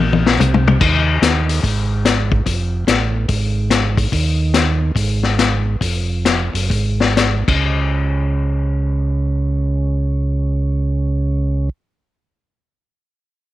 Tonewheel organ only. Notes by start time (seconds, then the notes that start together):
Already playing: A#1
0.39 C2
0.80 D#2
1.22 D#2
1.63 G#1
2.46 F1
2.87 A1
3.29 G#1
4.12 D#2
4.95 G#1
5.81 F1
6.54 F#1
6.70 G#1
7.48 C#2